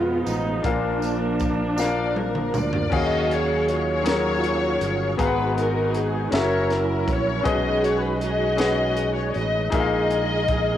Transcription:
0.00 0.22 F2 medium
0.00 0.60 B2 soft
0.00 0.61 B2 medium
0.00 0.65 B2 medium
0.00 0.60 F3 medium
0.00 2.87 F3 medium
0.00 0.59 G#3 medium
0.00 0.60 G#3 soft
0.00 0.61 G#3 medium
0.00 0.27 B3 medium
0.00 0.61 B3 medium
0.00 0.26 F4 medium
0.00 0.64 F4 medium
0.00 2.87 F4 medium
0.00 0.63 G#4 medium
0.00 0.65 G#4 medium
0.00 0.66 F5 medium
0.26 0.61 A1 medium
0.26 0.62 D#4 medium
0.26 closed hi-hat soft
0.26 tambourine soft
0.63 2.49 A#1 medium
0.63 1.74 A#2 soft
0.63 2.88 F3 medium
0.63 2.50 F3 medium
0.63 2.88 A#3 soft
0.63 2.89 A#3 medium
0.63 1.40 D4 medium
0.63 2.54 D4 medium
0.63 2.88 D4 soft
0.63 2.90 D4 medium
0.63 1.41 F4 medium
0.63 0.71 A4 soft
0.63 1.42 A#4 medium
0.63 1.42 F5 medium
0.63 kick medium
0.63 closed hi-hat medium
0.67 2.51 A#3 medium
0.72 2.91 A#4 medium
1.02 closed hi-hat soft
1.02 tambourine soft
1.39 kick medium
1.39 closed hi-hat soft
1.39 tambourine soft
1.76 2.54 D4 medium
1.76 2.55 F4 medium
1.76 2.55 A#4 medium
1.76 2.14 D5 medium
1.76 2.56 F5 medium
1.76 snare soft
1.76 tambourine medium
2.16 2.54 A#4 medium
2.16 high tom medium
2.35 mid tom medium
2.54 2.89 D2 medium
2.54 2.93 D5 medium
2.54 mid tom medium
2.54 tambourine soft
2.73 floor tom medium
2.90 4.77 D#2 medium
2.90 4.01 D#3 medium
2.90 2.99 F3 soft
2.90 3.68 C#4 medium
2.90 3.68 F#4 medium
2.90 3.69 G#4 medium
2.90 3.69 F5 medium
2.90 kick medium
2.90 crash medium
2.94 5.16 C#4 medium
2.94 3.69 F#4 medium
2.94 5.16 G#4 medium
2.94 4.03 G#4 medium
2.94 3.31 D#5 loud
2.94 5.16 F5 medium
3.01 5.19 F#3 medium
3.31 3.69 C#5 medium
3.31 closed hi-hat soft
3.69 5.16 F4 medium
3.69 5.16 F#4 medium
3.69 5.16 C#5 loud
3.69 closed hi-hat soft
4.03 4.81 F#3 medium
4.03 4.81 C#4 medium
4.03 4.82 G#4 medium
4.03 4.83 A#4 medium
4.03 closed hi-hat medium
4.07 snare medium
4.44 closed hi-hat soft
4.81 5.16 G1 medium
4.81 closed hi-hat soft
5.17 6.28 G#1 medium
5.17 6.28 G#2 medium
5.17 6.32 G#3 medium
5.17 5.26 A#3 soft
5.17 5.95 B3 medium
5.17 6.29 D#4 medium
5.17 6.33 F#4 medium
5.17 6.29 F#4 medium
5.17 5.95 G#4 medium
5.17 6.33 G#4 medium
5.17 5.54 B4 loud
5.17 5.26 F5 medium
5.17 5.96 A#5 medium
5.17 kick medium
5.17 closed hi-hat medium
5.26 6.36 B3 medium
5.26 6.00 F#5 medium
5.58 5.93 A#4 medium
5.58 closed hi-hat soft
5.94 6.33 G#4 medium
5.94 closed hi-hat soft
6.30 7.04 F#1 medium
6.30 7.47 F#3 medium
6.30 7.08 C#4 medium
6.30 7.45 C#4 medium
6.30 7.46 E4 medium
6.30 7.09 F#4 medium
6.30 6.39 A4 medium
6.30 7.09 A#4 medium
6.30 7.10 E5 medium
6.30 snare loud
6.30 closed hi-hat medium
6.35 7.43 E4 medium
6.35 6.70 A#4 medium
6.35 6.71 C#5 medium
6.40 7.50 A#4 medium
6.70 7.08 A#4 medium
6.70 snare soft
6.70 closed hi-hat soft
7.07 7.43 A#1 medium
7.07 7.47 C#5 medium
7.07 kick medium
7.07 closed hi-hat soft
7.43 9.31 B1 loud
7.43 8.54 B2 medium
7.43 8.21 C#4 medium
7.43 9.69 C#4 medium
7.43 8.19 F#4 medium
7.43 8.22 G#4 medium
7.43 8.22 B4 medium
7.43 9.69 B4 medium
7.43 8.23 D#5 medium
7.43 7.84 D#5 loud
7.43 kick medium
7.43 closed hi-hat medium
7.47 9.69 G#3 medium
7.47 7.53 D4 soft
7.47 8.19 G#4 medium
7.54 9.72 D#4 medium
7.84 8.03 C#5 medium
7.84 closed hi-hat soft
8.03 8.22 B4 medium
8.20 9.30 F#4 medium
8.20 9.30 G#4 medium
8.20 9.15 D#5 loud
8.20 closed hi-hat soft
8.57 9.35 C#4 medium
8.57 9.35 G#4 medium
8.57 9.36 B4 medium
8.57 9.37 F#5 medium
8.57 snare medium
8.57 closed hi-hat medium
8.97 closed hi-hat medium
9.15 9.33 C#5 medium
9.34 9.70 A1 medium
9.34 9.73 D#5 medium
9.34 closed hi-hat medium
9.70 10.77 A#1 medium
9.70 10.77 A#2 medium
9.70 10.77 G#3 medium
9.70 10.49 D#4 medium
9.70 10.77 D#4 medium
9.70 10.77 F4 medium
9.70 10.49 G#4 medium
9.70 10.77 G#4 medium
9.70 10.50 A#4 medium
9.70 10.77 A#4 medium
9.70 10.77 D#5 loud
9.70 9.80 E5 medium
9.70 kick medium
9.70 closed hi-hat medium
9.80 10.54 F5 medium
10.11 closed hi-hat soft
10.48 kick medium
10.48 closed hi-hat soft

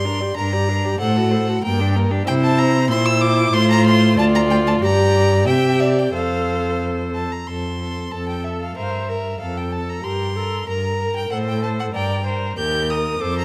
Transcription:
0.00 0.28 G2 medium
0.00 0.34 C6 medium
0.05 0.22 D4 medium
0.05 0.21 A#4 soft
0.20 0.36 G4 soft
0.20 0.36 D5 medium
0.36 0.92 G2 medium
0.36 0.54 D4 medium
0.36 0.54 A#4 medium
0.36 0.98 A#5 medium
0.52 0.70 G4 medium
0.52 0.70 D5 soft
0.68 0.86 D4 medium
0.68 0.86 A#4 soft
0.84 1.00 G4 medium
0.84 0.99 D5 medium
1.00 1.56 A2 medium
1.00 1.18 A4 medium
1.00 1.17 C5 medium
1.00 1.62 F#5 medium
1.16 1.34 F#4 medium
1.16 1.32 A4 medium
1.30 1.50 A4 medium
1.30 1.49 C5 medium
1.47 1.64 F#4 medium
1.47 1.62 A4 medium
1.63 2.19 G2 medium
1.63 1.82 A#3 medium
1.63 1.81 A#4 medium
1.63 1.95 G5 medium
1.80 1.97 D4 medium
1.80 1.97 G4 medium
1.96 2.12 A#3 medium
1.96 2.12 A#4 medium
2.11 2.26 D4 medium
2.11 2.26 G4 medium
2.26 2.90 C3 medium
2.26 2.86 E4 medium
2.26 2.86 C5 medium
2.26 2.33 G5 loud
2.44 2.60 A5 medium
2.58 2.89 A#5 loud
2.89 3.51 A#2 medium
2.89 3.54 E4 medium
2.89 3.51 C5 medium
2.89 3.07 C6 loud
3.06 3.23 E6 loud
3.21 3.55 D6 loud
3.52 4.18 A2 medium
3.52 4.16 F4 medium
3.52 4.19 C5 medium
3.52 3.69 C6 loud
3.70 3.85 A#5 loud
3.86 4.17 C6 loud
4.16 4.80 D2 medium
4.16 4.83 F4 medium
4.16 4.80 D5 medium
4.16 4.24 A5 loud
4.35 4.41 A#5 medium
4.50 4.56 G5 medium
4.67 4.73 A5 medium
4.81 5.49 G2 medium
4.81 5.46 G4 medium
4.81 5.48 D5 medium
4.81 5.46 A#5 loud
5.47 6.14 C3 medium
5.47 6.13 G4 medium
5.47 5.82 E5 medium
5.47 5.81 G5 medium
5.80 6.13 D5 medium
5.80 6.00 E5 medium
5.99 6.14 G5 medium
6.14 7.25 F2 medium
6.14 7.25 A4 medium
6.14 7.25 C5 medium
6.14 6.81 F5 medium
7.15 7.33 A5 medium
7.32 7.49 A#5 medium
7.47 8.05 F2 soft
7.47 7.79 A4 soft
7.47 8.13 C6 medium
7.81 8.11 A4 soft
8.11 8.69 F2 soft
8.11 8.43 A4 soft
8.11 8.72 A4 soft
8.11 8.28 A5 medium
8.29 8.46 G5 medium
8.44 8.76 A4 soft
8.44 8.60 E5 soft
8.61 8.76 F5 soft
8.76 9.32 G2 soft
8.76 9.07 A#4 soft
8.76 9.11 C5 medium
8.76 8.84 E5 soft
8.83 8.91 F5 soft
8.90 9.39 E5 medium
9.08 9.39 A#4 soft
9.08 9.40 A#4 soft
9.39 9.96 F2 medium
9.39 9.71 A4 soft
9.39 10.02 A4 soft
9.39 9.59 F5 medium
9.57 9.74 G5 soft
9.72 10.03 A4 soft
9.72 9.91 A5 medium
9.89 10.05 A#5 medium
10.03 10.59 G2 medium
10.03 10.38 G4 soft
10.03 10.34 A#4 soft
10.03 10.67 C6 medium
10.35 10.67 A4 medium
10.35 10.66 A#4 soft
10.66 11.22 G2 soft
10.66 10.97 A#4 soft
10.66 11.32 A#4 medium
10.66 11.14 A#5 medium
10.99 11.29 A#4 soft
11.16 11.30 G5 medium
11.30 11.86 A2 medium
11.30 11.94 A4 medium
11.30 11.61 C5 medium
11.30 11.37 F#5 medium
11.48 11.62 G5 medium
11.62 11.93 C5 soft
11.62 11.69 A5 medium
11.79 11.86 F#5 medium
11.94 12.50 G2 medium
11.94 12.25 A#4 soft
11.94 12.25 D5 medium
11.94 12.25 G5 medium
12.26 12.57 A#4 soft
12.26 12.57 C5 soft
12.57 13.13 D#2 medium
12.57 12.92 G4 medium
12.57 13.22 A#4 medium
12.57 12.91 G6 medium
12.90 13.21 A#4 soft
12.90 13.23 D#6 medium
13.20 13.45 F2 medium
13.20 13.45 A4 medium
13.20 13.45 C5 medium
13.20 13.37 D6 medium
13.38 13.45 A#5 medium

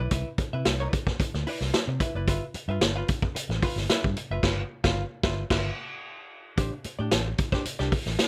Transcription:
0.00 0.11 E4 soft
0.00 0.11 B4 medium
0.00 0.10 D5 medium
0.11 0.22 C2 loud
0.11 0.28 E4 medium
0.11 0.28 B4 medium
0.11 0.29 E5 medium
0.11 kick loud
0.11 closed hi-hat loud
0.38 muted fingered electric bass stroke soft
0.38 muted hollow-body jazz guitar stroke soft
0.38 kick medium
0.38 closed hi-hat medium
0.53 0.63 C3 medium
0.53 0.64 E4 soft
0.53 0.65 B4 medium
0.53 0.64 E5 medium
0.65 0.86 C2 medium
0.65 muted hollow-body jazz guitar stroke soft
0.65 snare loud
0.65 closed hi-hat medium
0.80 0.93 E4 medium
0.80 0.93 B4 medium
0.80 0.94 D5 medium
0.93 muted hollow-body jazz guitar stroke soft
0.93 kick medium
0.93 closed hi-hat medium
1.07 muted hollow-body jazz guitar stroke soft
1.07 kick medium
1.07 snare soft
1.20 muted fingered electric bass stroke soft
1.20 muted hollow-body jazz guitar stroke soft
1.20 kick loud
1.20 closed hi-hat loud
1.34 1.44 D2 medium
1.34 muted hollow-body jazz guitar stroke soft
1.34 snare soft
1.47 1.63 E4 medium
1.47 1.62 B4 medium
1.47 1.61 D5 loud
1.47 open hi-hat medium
1.61 1.70 C2 medium
1.61 muted hollow-body jazz guitar stroke medium
1.61 snare soft
1.74 muted hollow-body jazz guitar stroke soft
1.74 snare loud
1.74 closed hi-hat loud
1.87 1.97 C3 loud
1.87 muted hollow-body jazz guitar stroke medium
2.00 2.13 E4 medium
2.00 2.14 B4 medium
2.00 2.14 E5 medium
2.00 kick medium
2.00 closed hi-hat medium
2.15 2.27 F#1 medium
2.15 2.27 E4 medium
2.15 2.27 B4 medium
2.15 2.26 D5 medium
2.27 2.38 G1 loud
2.27 2.43 F4 medium
2.27 2.44 B4 medium
2.27 2.44 E5 medium
2.27 kick medium
2.27 closed hi-hat medium
2.54 muted fingered electric bass stroke soft
2.54 muted hollow-body jazz guitar stroke soft
2.54 closed hi-hat medium
2.68 2.78 G2 medium
2.68 2.81 F4 medium
2.68 2.80 B4 medium
2.68 2.80 E5 medium
2.81 3.01 G1 medium
2.81 muted hollow-body jazz guitar stroke soft
2.81 snare loud
2.81 closed hi-hat medium
2.96 3.08 F4 medium
2.96 3.08 B4 medium
2.96 3.10 F5 medium
3.08 muted hollow-body jazz guitar stroke soft
3.08 kick medium
3.08 closed hi-hat medium
3.22 muted hollow-body jazz guitar stroke soft
3.22 kick medium
3.35 muted hollow-body jazz guitar stroke soft
3.35 muted fingered electric bass stroke soft
3.35 closed hi-hat loud
3.49 3.59 A1 medium
3.49 muted hollow-body jazz guitar stroke soft
3.49 snare soft
3.63 3.78 F4 medium
3.63 3.78 B4 loud
3.63 3.78 F5 medium
3.63 kick medium
3.63 open hi-hat medium
3.76 3.86 G1 medium
3.76 muted hollow-body jazz guitar stroke soft
3.76 snare soft
3.90 4.05 F4 medium
3.90 4.06 B4 loud
3.90 4.06 E5 loud
3.90 snare loud
3.90 closed hi-hat medium
4.04 4.13 G2 loud
4.04 kick medium
4.17 muted hollow-body jazz guitar stroke soft
4.17 closed hi-hat medium
4.30 4.40 F#1 medium
4.30 4.42 F4 soft
4.30 4.42 B4 medium
4.30 4.42 E5 medium
4.43 4.62 G1 loud
4.43 4.61 F4 loud
4.43 4.62 B4 loud
4.43 4.63 F5 loud
4.43 kick loud
4.43 snare loud
4.43 crash medium
4.84 5.02 G1 loud
4.84 5.03 F4 loud
4.84 5.03 B4 loud
4.84 5.02 F5 loud
4.84 kick loud
4.84 snare loud
5.23 5.42 G1 loud
5.23 5.44 F4 loud
5.23 5.43 B4 loud
5.23 5.42 E5 loud
5.23 kick loud
5.23 snare loud
5.50 5.69 G1 loud
5.50 5.69 F4 medium
5.50 5.70 B4 loud
5.50 5.70 E5 loud
5.50 kick loud
5.50 snare loud
5.50 crash medium
6.58 6.68 A1 loud
6.58 6.73 D4 medium
6.58 6.72 G4 medium
6.58 6.71 C5 medium
6.58 kick loud
6.58 closed hi-hat medium
6.72 muted hollow-body jazz guitar stroke medium
6.84 muted fingered electric bass stroke medium
6.84 muted hollow-body jazz guitar stroke soft
6.84 closed hi-hat medium
6.99 7.09 A2 medium
6.99 7.10 D4 soft
6.99 7.10 G4 medium
6.99 7.10 D5 medium
7.11 7.32 A1 medium
7.11 muted hollow-body jazz guitar stroke soft
7.11 snare loud
7.11 closed hi-hat medium
7.26 muted hollow-body jazz guitar stroke medium
7.38 kick medium
7.38 closed hi-hat medium
7.52 7.64 D4 medium
7.52 7.65 G4 medium
7.52 7.66 C5 medium
7.52 kick medium
7.52 snare soft
7.65 muted fingered electric bass stroke medium
7.65 muted hollow-body jazz guitar stroke soft
7.65 closed hi-hat loud
7.79 7.89 C2 medium
7.79 7.91 D4 medium
7.79 7.92 G4 medium
7.79 7.93 D5 medium
7.79 snare soft
7.92 muted hollow-body jazz guitar stroke medium
7.92 kick medium
7.92 open hi-hat medium
8.06 8.16 A1 medium
8.06 muted hollow-body jazz guitar stroke medium
8.06 snare soft
8.19 muted hollow-body jazz guitar stroke soft
8.19 snare loud
8.19 closed hi-hat medium

